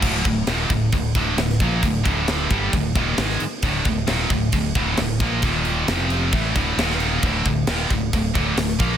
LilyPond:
<<
  \new Staff \with { instrumentName = "Distorted electric guitar" } { \clef bass \time 4/4 \key d \phrygian \tempo 4 = 133 <d, a, d>8 <d, a,>8 <ees, bes, ees>8 <d, a,>8 <d, a,>8 <d, a, d>8 <d, a,>8 <bes, f bes>8 | <d, a,>8 <d, a, d>4 <g, d g>8 <d, a,>8 <ees, bes, ees>8 <gis, ees gis>8 r8 | <d, a, d>8 <d, a,>8 <ees, bes, ees>8 <d, a,>8 <d, a,>8 <d, a, d>8 <d, a,>8 <bes, f bes>8 | <ees, bes, ees>4 <f, c f>4 <a, e a>8 <d, a, d>8 <ees, bes, ees>4 |
<d, a, d>8 <d, a,>8 <ees, bes, ees>8 <d, a,>8 <d, a,>8 <d, a, d>8 <d, a,>8 <bes, f bes>8 | }
  \new Staff \with { instrumentName = "Fingered electric bass" } { \clef bass \time 4/4 \key d \phrygian d,,8 d,,8 ees,,8 d,,8 d,,8 d,,8 d,,8 bes,,8 | d,,8 d,,4 g,,8 d,,8 ees,,8 gis,,8 r8 | d,,8 d,,8 ees,,8 d,,8 d,,8 d,,8 d,,8 bes,,8 | ees,,4 f,,4 a,,8 d,,8 ees,,4 |
d,,8 d,,8 ees,,8 d,,8 d,,8 d,,8 d,,8 bes,,8 | }
  \new DrumStaff \with { instrumentName = "Drums" } \drummode { \time 4/4 <cymc bd>8 <cymc bd>8 <cymc sn>8 <cymc bd>8 <cymc bd>8 <cymc bd>8 <cymc sn>16 sn16 <cymc bd>8 | <cymc bd>8 <cymc bd>8 <cymc sn>8 <cymc bd>8 <cymc bd>8 <cymc bd>8 <cymc sn>16 sn16 cymc8 | <cymc bd>8 <cymc bd>8 <cymc sn>8 <cymc bd>8 <cymc bd>8 <cymc bd>8 <cymc sn>8 <cymc bd>8 | <cymc bd>8 cymc8 <cymc sn>8 cymc8 <cymc bd>8 <cymc bd>8 <cymc sn>16 sn16 cymc8 |
<cymc bd>8 <cymc bd>8 <cymc sn>8 <cymc bd>8 <cymc bd>8 <cymc bd>8 <cymc sn>16 sn16 <cymc bd>8 | }
>>